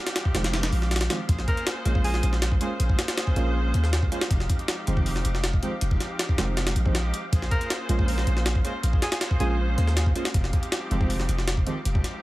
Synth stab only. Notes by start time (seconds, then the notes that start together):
0.35 D#3 F3 G#3 C4
1.10 D#3 F3 G#3 C4
1.86 G#3 A#3 C#4 F4
2.61 G#3 A#3 C#4 F4
3.36 G#3 A#3 C#4 F4
4.12 G#3 A#3 C#4 F4
4.87 D#3 F3 G#3 C4
5.63 D#3 F3 G#3 C4
6.38 D#3 F3 G#3 C4
6.86 D#3 F3 G#3 C4
7.89 G#3 A#3 C#4 F4
8.65 G#3 A#3 C#4 F4
9.40 G#3 A#3 C#4 F4
10.16 G#3 A#3 C#4 F4
10.91 D#3 F3 G#3 C4
11.67 D#3 F3 G#3 C4